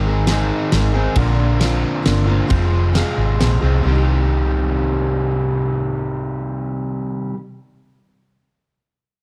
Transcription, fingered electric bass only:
Already playing: G#1
0.73 G#1
1.16 A#1
2.06 G1
2.51 F1
3.18 G#1
3.41 A#1
3.63 C2
3.85 C2

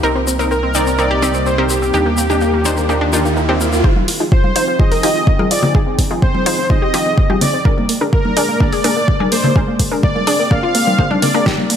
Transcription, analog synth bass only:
0.03 C2
1.94 D#2
4.08 F1
4.56 F1
4.68 F1
5.03 F1
5.51 F1
6.94 G#1
7.89 A#1
8.49 A#1
8.84 A#1
9.32 A#1
9.79 C2
10.39 A#1
10.75 D2
11.22 G#1
11.70 D#2

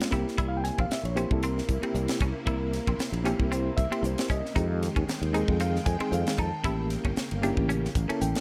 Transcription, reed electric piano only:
Already playing: G#3 C#4 F4
0.11 A#3 C4 E4 G4
0.48 F5
0.57 G5
0.64 G#5
0.80 F5
0.92 E5
1.05 C#5
1.15 A#3 C4 E4 G4 C5
1.33 A4
1.44 A#4
1.81 A#3 C4 E4 G4
2.46 A#3 C4 E4 A#4
3.24 A#3 C4 E4 G4
3.54 C5
3.77 E5
3.90 A#3 C4 E4 G4
4.06 C5
4.31 D#5
4.54 G#3 C4 D#4 G4
5.33 G#3 C4 D#4 G#4
5.61 F5
5.86 G#5
5.99 G#3 C4 D#4 G#4
6.14 F5
6.39 A5
6.63 A#3 C#4 E4 G4
7.42 A#3 C#4 E4 G4
8.08 A#3 C#4 E4 A4
8.22 G5

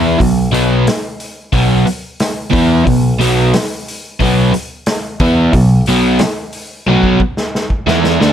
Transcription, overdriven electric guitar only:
Already playing: E3 B3 E4
0.19 B2 F#3
0.52 B2 F#3 B3
1.52 B2 F#3 B3
1.87 muted overdriven electric guitar stroke
2.51 E3 B3 E4
2.85 B2 F#3
3.19 B2 F#3 B3
4.20 B2 F#3 B3
4.53 muted overdriven electric guitar stroke
5.20 E3 B3 E4
5.53 B2 F#3
5.88 B2 F#3 B3
6.87 B2 F#3 B3
7.22 muted overdriven electric guitar stroke
7.87 E3 B3 E4
8.21 D3 A3 D4

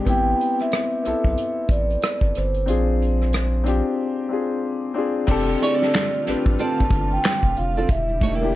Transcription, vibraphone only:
0.09 G5
0.61 E5
1.06 E5
1.71 D5
2.37 C5
5.62 D5
6.60 A5
7.13 G5
7.57 F5
7.90 E5

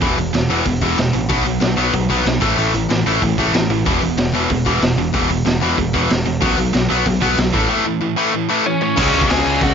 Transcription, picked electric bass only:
0.02 E1
0.18 E1
0.34 E1
0.49 E1
0.66 E1
0.81 E1
0.97 E1
1.14 A1
1.30 B1
1.46 B1
1.61 B1
1.77 B1
1.94 B1
2.10 B1
2.26 B1
2.42 A1
2.58 A1
2.74 A1
2.89 A1
3.05 A1
3.22 A1
3.38 A1
3.53 A1
3.69 A1
3.86 E1
4.01 E1
4.18 E1
4.33 E1
4.50 E1
4.66 E1
4.81 E1
4.96 E1
5.14 E1
5.29 E1
5.45 E1
5.61 E1
5.78 E1
5.94 E1
6.10 E1
6.26 E1
6.42 B1
6.58 B1
6.74 B1
6.91 B1
7.06 B1
7.22 B1
7.38 B1
7.54 A1
8.98 C#2
9.14 C#2
9.30 C#2
9.46 C#2
9.61 C#2

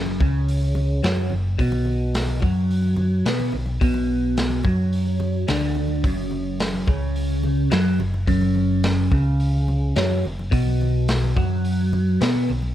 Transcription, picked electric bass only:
Already playing: F#1
0.21 C#2
1.04 F#2
1.31 F#1
1.59 B1
2.43 F#2
3.26 B2
3.53 B1
3.81 B1
4.64 F#2
5.49 D2
6.04 F#1
6.87 C#2
7.73 F#2
8.00 F#1
8.28 F#1
9.12 C#2
9.97 F#2
10.25 F#1
10.52 B1
11.36 F#2
12.22 B2
12.50 B1

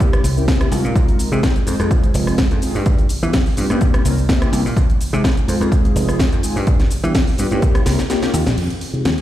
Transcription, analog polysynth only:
Already playing: A#3 C4 C#4 E4 G4
0.36 A#3 C4 C#4 E4 G4
0.60 A#3 C4 C#4 E4 G4
0.71 G#3 C4 D#4 F4 A#4
1.32 G#3 C4 D#4 F4 G#4
1.66 G#3 C4 D#4 F4 C5
1.79 G#3 C4 D#4 F4 G#4
2.62 G#3 C4 D#4 F4 G#4
3.22 G3 B3 D4 F4 G4
3.57 G3 B3 D4 F4 G4
3.70 A#3 C4 C#4 E4 G4
4.05 A#3 C4 C#4 E4 A#4
4.28 A#3 C4 C#4 E4 G4
4.52 A#3 C4 C#4 E4 G4
5.13 G#3 C4 D#4 F4 G#4
5.48 G#3 C4 D#4 F4 C5
5.60 G#3 C4 D#4 F4 G#4
6.43 G#3 C4 D#4 F4 G#4
7.03 G3 B3 D4 F4 G4
7.38 G3 B3 D4 F4 G4
7.51 A#3 C4 C#4 E4 G4
7.86 A#3 C4 C#4 E4 A#4
8.09 A#3 C#4 D#4 F4 G4
8.33 A#3 C#4 D#4 F4 G4
8.94 G#3 C4 D#4 F4 G#4

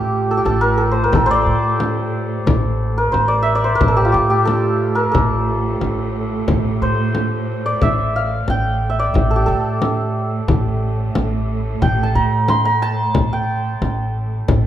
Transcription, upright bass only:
Already playing: A1
0.45 A1
1.12 A1
1.46 A2
2.46 A1
3.13 A1
3.80 A1
4.14 A2
5.14 A1
5.82 A1
6.48 A1
6.82 A2
7.81 A1
8.48 A1
9.14 A1
9.48 A2
10.48 A1
11.15 A1
11.82 A1
12.15 A2
13.15 A1
13.82 A1
14.49 A1

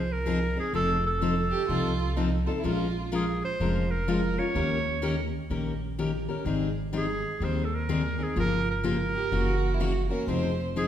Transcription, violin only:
1.51 G4
1.69 F4
2.17 D#4
2.46 F4
2.59 E4
2.65 F4
9.15 G4
9.34 F#4
9.74 E4
9.82 F#4
10.10 A#4
10.29 C5

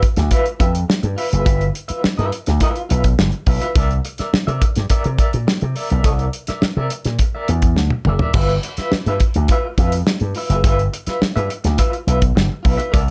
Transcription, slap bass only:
0.17 D2
0.60 F2
1.03 G2
1.33 F#1
1.46 G1
1.90 muted slap bass stroke
2.04 muted slap bass stroke
2.19 G2
2.48 D2
2.91 B1
3.19 G1
3.47 B1
3.75 C2
4.20 muted slap bass stroke
4.33 muted slap bass stroke
4.48 C3
4.77 G2
4.90 muted slap bass stroke
5.06 C3
5.34 A#2
5.62 C3
5.91 B1
6.04 C2
6.49 muted slap bass stroke
6.63 muted slap bass stroke
6.77 C3
7.05 A#2
7.49 E2
7.77 D2
8.06 F#1
8.34 G1
8.78 muted slap bass stroke
8.92 muted slap bass stroke
9.06 G2
9.36 D2
9.78 F2
10.21 G2
10.50 F#1
10.64 G1
11.07 muted slap bass stroke
11.22 muted slap bass stroke
11.36 G2
11.64 D2
12.07 B1
12.36 G1
12.65 B1
12.94 C2

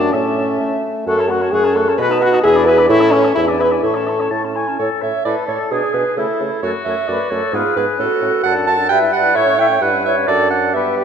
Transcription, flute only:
Already playing: A5
0.13 A5
1.08 C#6
1.20 A5
1.30 C#6
1.41 A5
1.53 C#6
1.63 A5
1.75 C#6
1.88 A5
1.98 B5
2.10 A5
2.21 B5
2.33 A5
2.45 G#5
2.55 B5
2.65 G#5
2.77 B5
2.88 C#6
3.00 A5
3.11 C#6
3.22 A5
3.35 B5
3.47 G#5
3.59 B5
3.71 G#5
3.84 C#6
3.96 A5
4.09 C#6
4.21 A5
4.33 C#6
4.44 A5
4.55 C#6
4.67 A5
4.78 A4
5.01 C#5
5.24 B4
5.47 A4
5.71 D4
5.94 G#4
6.17 E4
6.63 A4
6.87 C#5
7.09 B4
7.31 A4
7.54 F4
7.77 G#4
8.01 F#4
8.46 D5
8.68 F#5
8.91 E5
9.13 D5
9.36 C#5
9.59 E5
9.82 D5
10.05 C#5
10.28 A4
10.51 D5
10.75 B4
10.98 G4

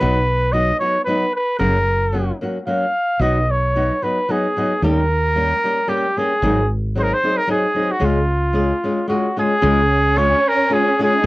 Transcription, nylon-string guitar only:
0.00 B2 F#3 B3 D#4 F#4
0.53 F#3 B3 D#4 F#4
0.80 F#3 B3 D#4 F#4
1.07 F#3 B3 D#4 F#4
1.59 F#2 C#3 F#3 A#3 C#4 F#4
2.12 F#3 A#3 C#4 F#4
2.41 F#3 A#3 C#4 F#4
2.66 F#3 A#3 C#4 F#4
3.20 B2 F#3 B3 D#4 F#4
3.76 F#3 B3 D#4 F#4
4.02 F#3 B3 D#4 F#4
4.29 F#3 B3 D#4 F#4
4.57 F#3 B3 D#4 F#4
4.83 D#3 G3 A#3 C#4 G4
5.36 G3 A#3 C#4 G4
5.64 G3 A#3 C#4 G4
5.88 G3 A#3 C#4 G4
6.17 G3 A#3 C#4 G4
6.43 G#2 D#3 F#3 C4 D#4 G#4
6.95 F#3 C4 D#4 G#4
7.23 F#3 C4 D#4 G#4
7.47 F#3 C4 D#4 G#4
7.75 F#3 C4 D#4 G#4
8.00 C#3 G#3 C#4 F4 G#4
8.53 G#3 C#4 F4 G#4
8.84 G#3 C#4 F4 G#4
9.07 G#3 C#4 F4 G#4
9.37 G#3 C#4 F4 G#4
9.62 C#3 G#3 C#4 F4 G#4
10.16 G#3 C#4 F4 G#4
10.69 G#3 C#4 F4 G#4
10.99 G#3 C#4 F4 G#4

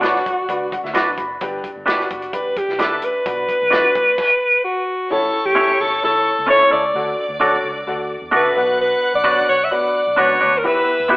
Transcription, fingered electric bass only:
Already playing: B1
0.26 A1
0.49 C#2
0.84 D2
0.95 B1
1.18 F#1
1.41 G1
1.76 G1
2.11 F#1
2.33 A1
2.68 B1
2.80 G1
3.03 A1
3.26 B1
3.62 B1
3.96 A1
5.11 A1
5.45 A1
5.80 G1
6.04 B1
6.39 C#2
6.49 A1
6.72 C#2
6.94 D2
7.29 D2
7.64 C#2
7.87 D2
8.22 E2
8.33 C#2
8.57 B1
9.14 B1
9.49 B1
9.72 A1
10.07 B1
10.19 C#2
10.42 D2
10.65 E2
11.00 E2

